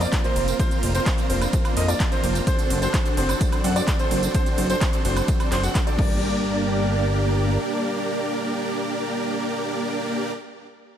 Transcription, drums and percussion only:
0.01 closed hi-hat, tambourine
0.13 kick, clap, closed hi-hat, ride, tambourine
0.24 closed hi-hat, tambourine
0.36 open hi-hat, ride
0.48 closed hi-hat, tambourine
0.60 kick, closed hi-hat, ride, tambourine
0.71 closed hi-hat, tambourine
0.83 open hi-hat, ride
0.95 closed hi-hat, tambourine
1.06 kick, clap, closed hi-hat, ride, tambourine
1.18 closed hi-hat, tambourine
1.30 open hi-hat, ride
1.42 closed hi-hat, tambourine, high woodblock
1.53 kick, closed hi-hat, ride, tambourine
1.65 closed hi-hat, tambourine, high woodblock
1.77 open hi-hat, ride
1.88 closed hi-hat, tambourine
2.00 kick, clap, closed hi-hat, ride, tambourine
2.12 closed hi-hat, tambourine
2.24 open hi-hat, ride
2.35 closed hi-hat, tambourine
2.47 kick, closed hi-hat, ride, tambourine
2.59 closed hi-hat, tambourine
2.70 open hi-hat, ride
2.82 closed hi-hat, tambourine
2.94 kick, clap, closed hi-hat, ride, tambourine
3.06 closed hi-hat, tambourine
3.17 open hi-hat, ride
3.29 closed hi-hat, tambourine, high woodblock
3.41 kick, closed hi-hat, ride, tambourine
3.52 closed hi-hat, tambourine, high woodblock
3.64 open hi-hat, ride
3.76 closed hi-hat, tambourine
3.88 kick, clap, closed hi-hat, ride, tambourine
3.99 closed hi-hat, tambourine
4.11 open hi-hat, ride
4.23 closed hi-hat, tambourine
4.34 kick, closed hi-hat, ride, tambourine
4.46 closed hi-hat, tambourine
4.58 open hi-hat, ride
4.70 closed hi-hat, tambourine
4.81 kick, clap, closed hi-hat, ride, tambourine
4.93 closed hi-hat, tambourine
5.05 open hi-hat, ride
5.17 closed hi-hat, tambourine, high woodblock
5.28 kick, closed hi-hat, ride, tambourine
5.40 closed hi-hat, tambourine, high woodblock
5.52 clap, open hi-hat, ride
5.64 closed hi-hat, tambourine
5.75 kick, clap, closed hi-hat, ride, tambourine
5.87 closed hi-hat, tambourine
5.99 kick, crash

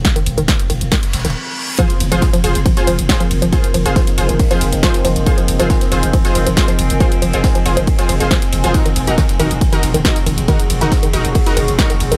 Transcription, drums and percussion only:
0.05 kick, snare, closed hi-hat, ride
0.16 closed hi-hat
0.26 open hi-hat, ride
0.38 closed hi-hat
0.48 kick, snare, closed hi-hat, ride
0.59 snare, closed hi-hat
0.70 open hi-hat, ride
0.81 closed hi-hat
0.91 kick, snare, closed hi-hat, open hi-hat
1.03 closed hi-hat
1.13 snare, open hi-hat, ride
1.19 snare, ride
1.24 snare, closed hi-hat, ride
1.29 snare, ride
1.78 kick, closed hi-hat, ride
1.90 closed hi-hat, ride
2.00 open hi-hat, ride
2.12 snare, closed hi-hat, ride
2.21 kick, snare, closed hi-hat, ride
2.33 snare, closed hi-hat, ride
2.44 open hi-hat, ride
2.55 closed hi-hat, ride
2.65 kick, closed hi-hat, ride
2.77 snare, closed hi-hat, ride
2.87 open hi-hat, ride
2.99 closed hi-hat, ride
3.09 kick, snare, closed hi-hat, ride
3.20 snare, closed hi-hat, ride
3.31 open hi-hat, ride
3.42 closed hi-hat, ride
3.52 kick, closed hi-hat, ride
3.64 closed hi-hat, ride
3.74 open hi-hat, ride
3.86 closed hi-hat, ride
3.96 kick, snare, closed hi-hat, ride
4.07 snare, closed hi-hat, ride
4.17 open hi-hat, ride
4.29 closed hi-hat, ride
4.39 kick, closed hi-hat, open hi-hat, ride
4.51 closed hi-hat, ride
4.61 open hi-hat, ride
4.73 closed hi-hat, ride
4.83 kick, snare, closed hi-hat, ride
4.94 snare, closed hi-hat, ride
5.04 snare, open hi-hat, ride
5.16 closed hi-hat, ride
5.26 kick, closed hi-hat, ride
5.38 closed hi-hat, ride
5.48 open hi-hat, ride
5.60 snare, closed hi-hat, ride
5.70 kick, snare, closed hi-hat, ride
5.81 snare, closed hi-hat, ride
5.92 open hi-hat, ride
6.03 closed hi-hat, ride
6.13 kick, closed hi-hat, ride
6.25 snare, closed hi-hat, ride
6.35 open hi-hat, ride
6.47 closed hi-hat, ride
6.57 kick, snare, closed hi-hat, ride
6.68 snare, closed hi-hat, ride
6.78 open hi-hat, ride
6.90 closed hi-hat, ride
7.00 kick, closed hi-hat, ride
7.12 closed hi-hat, ride
7.22 open hi-hat, ride
7.33 closed hi-hat, ride
7.44 kick, snare, closed hi-hat, ride
7.55 snare, closed hi-hat, ride
7.66 open hi-hat, ride
7.77 closed hi-hat, ride
7.87 kick, closed hi-hat, open hi-hat, ride
7.99 closed hi-hat, ride
8.09 open hi-hat, ride
8.20 closed hi-hat, ride
8.31 kick, snare, closed hi-hat, ride
8.42 snare, closed hi-hat, ride
8.52 snare, open hi-hat, ride
8.64 closed hi-hat, ride
8.74 kick, closed hi-hat, ride
8.86 closed hi-hat, ride
8.96 open hi-hat, ride
9.07 snare, closed hi-hat, ride
9.18 kick, snare, closed hi-hat, ride
9.29 snare, closed hi-hat, ride
9.40 open hi-hat, ride
9.51 closed hi-hat, ride
9.61 kick, closed hi-hat, ride
9.73 snare, closed hi-hat, ride
9.83 open hi-hat, ride
9.94 closed hi-hat, ride
10.05 kick, snare, closed hi-hat, ride
10.16 snare, closed hi-hat, ride
10.26 open hi-hat, ride
10.38 closed hi-hat, ride
10.48 kick, closed hi-hat, ride
10.60 closed hi-hat, ride
10.70 open hi-hat, ride
10.81 closed hi-hat, ride
10.91 kick, snare, closed hi-hat, ride
11.03 snare, closed hi-hat, ride
11.13 open hi-hat, ride
11.25 closed hi-hat, ride
11.34 kick, closed hi-hat, open hi-hat, ride
11.46 closed hi-hat, ride
11.57 open hi-hat, ride
11.68 closed hi-hat, ride
11.78 kick, snare, closed hi-hat, ride
11.90 snare, closed hi-hat, ride
12.00 snare, open hi-hat, ride
12.11 closed hi-hat, ride

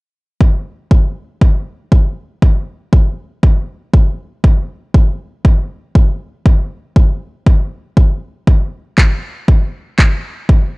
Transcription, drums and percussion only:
0.41 kick
0.91 kick
1.41 kick
1.92 kick
2.42 kick
2.93 kick
3.43 kick
3.94 kick
4.44 kick
4.94 kick
5.45 kick
5.95 kick
6.46 kick
6.96 kick
7.46 kick
7.97 kick
8.47 kick
8.98 kick, clap
9.48 kick
9.99 kick, clap
10.49 kick

